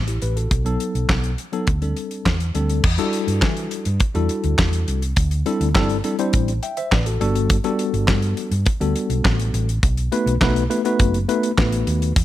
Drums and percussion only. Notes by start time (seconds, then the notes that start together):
0.08 closed hi-hat
0.22 closed hi-hat
0.37 closed hi-hat
0.51 kick, closed hi-hat
0.66 closed hi-hat
0.80 closed hi-hat
0.95 closed hi-hat
1.09 kick, snare, clap
1.24 closed hi-hat
1.38 closed hi-hat
1.53 closed hi-hat
1.67 kick, closed hi-hat
1.82 closed hi-hat
1.97 closed hi-hat
2.11 closed hi-hat
2.26 kick, snare, clap
2.40 closed hi-hat
2.55 closed hi-hat
2.69 closed hi-hat
2.84 kick, crash
2.98 closed hi-hat
3.13 closed hi-hat
3.28 closed hi-hat
3.42 kick, snare, clap
3.57 closed hi-hat
3.71 closed hi-hat
3.85 closed hi-hat
4.00 kick, closed hi-hat
4.15 closed hi-hat
4.29 closed hi-hat
4.44 closed hi-hat
4.58 kick, snare, clap
4.73 closed hi-hat
4.88 closed hi-hat
5.02 closed hi-hat
5.16 kick, closed hi-hat
5.31 closed hi-hat
5.46 closed hi-hat
5.61 closed hi-hat
5.75 kick, snare, clap
5.89 closed hi-hat
6.04 closed hi-hat
6.19 closed hi-hat
6.33 kick, closed hi-hat
6.48 closed hi-hat
6.63 closed hi-hat
6.77 closed hi-hat
6.92 kick, snare, clap
7.06 closed hi-hat
7.21 closed hi-hat
7.35 closed hi-hat
7.50 kick, closed hi-hat
7.64 closed hi-hat
7.79 closed hi-hat
7.94 closed hi-hat
8.08 kick, snare, clap
8.22 closed hi-hat
8.37 closed hi-hat
8.52 closed hi-hat
8.66 kick, closed hi-hat
8.81 closed hi-hat
8.96 closed hi-hat
9.10 closed hi-hat
9.25 kick, snare, clap
9.39 closed hi-hat
9.54 closed hi-hat
9.69 closed hi-hat
9.83 kick, closed hi-hat
9.97 closed hi-hat
10.12 closed hi-hat
10.27 closed hi-hat
10.41 kick, snare, clap
10.56 closed hi-hat
10.71 closed hi-hat
10.85 closed hi-hat
10.99 kick, closed hi-hat
11.14 closed hi-hat
11.29 closed hi-hat
11.43 closed hi-hat
11.58 kick, snare, clap
11.72 closed hi-hat
11.87 closed hi-hat
12.02 closed hi-hat
12.16 kick, closed hi-hat